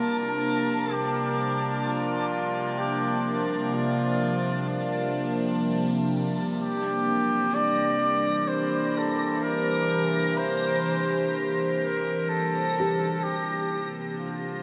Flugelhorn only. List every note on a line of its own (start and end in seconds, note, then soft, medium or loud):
0.00 0.93 A#4 loud
0.92 1.84 G4 medium
1.85 2.76 F4 medium
2.79 3.44 G4 medium
3.74 4.66 F4 loud
4.69 5.61 F4 medium
6.60 7.57 G4 loud
7.55 8.50 D5 loud
8.48 8.99 C5 loud
8.97 9.45 A4 medium
9.43 10.39 A#4 loud
10.38 11.56 C5 loud
11.82 12.30 A#4 medium
12.29 13.25 A4 loud
13.23 13.97 G4 loud
14.20 14.63 F4 loud